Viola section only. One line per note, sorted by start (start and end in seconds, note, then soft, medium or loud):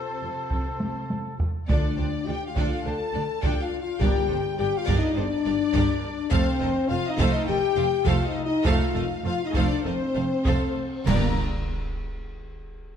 0.22 0.30 A3 soft
0.22 0.30 F4 soft
0.52 0.79 C4 soft
0.52 0.79 A4 soft
0.81 0.89 A#3 soft
0.81 0.89 G4 soft
1.11 1.20 C4 soft
1.11 1.19 A4 soft
1.41 1.49 A3 soft
1.41 1.49 F4 soft
1.69 1.96 D4 medium
1.69 1.97 F4 medium
1.98 2.06 D4 soft
1.98 2.06 F4 soft
2.27 2.35 D4 soft
2.27 2.35 F4 soft
2.56 2.83 D4 medium
2.56 2.83 F4 medium
2.86 2.94 D4 soft
2.86 2.94 F4 soft
3.15 3.23 D4 medium
3.15 3.23 F4 medium
3.43 3.70 D4 medium
3.43 3.70 F4 medium
4.01 4.28 D4 medium
4.01 4.28 G4 medium
4.31 4.39 D4 medium
4.31 4.39 G4 soft
4.59 4.67 D4 medium
4.59 4.67 G4 soft
4.88 5.15 D4 medium
4.88 5.15 G4 medium
5.17 5.25 D4 medium
5.17 5.25 G4 medium
5.46 5.54 D4 medium
5.46 5.54 G4 medium
5.75 6.02 D4 medium
5.75 6.02 G4 medium
6.32 6.59 A3 medium
6.32 6.59 A4 medium
6.61 6.69 A3 medium
6.61 6.69 A4 medium
6.89 6.97 A3 medium
6.89 6.98 A4 medium
7.18 7.46 A3 medium
7.18 7.46 A4 medium
7.48 7.57 A3 medium
7.48 7.56 A4 medium
7.77 7.85 A3 medium
7.77 7.85 A4 medium
8.06 8.34 A3 medium
8.06 8.34 A4 medium
8.65 8.93 A3 loud
8.65 8.93 A4 medium
8.94 9.02 A3 soft
8.94 9.02 A4 medium
9.24 9.32 A3 medium
9.24 9.32 A4 medium
9.54 9.82 A3 medium
9.54 9.82 A4 medium
9.85 9.93 A3 medium
9.85 9.93 A4 medium
10.15 10.23 A3 medium
10.15 10.23 A4 medium
10.45 10.74 A3 medium
10.45 10.74 A4 medium
11.07 11.42 D4 medium
11.07 11.42 G4 medium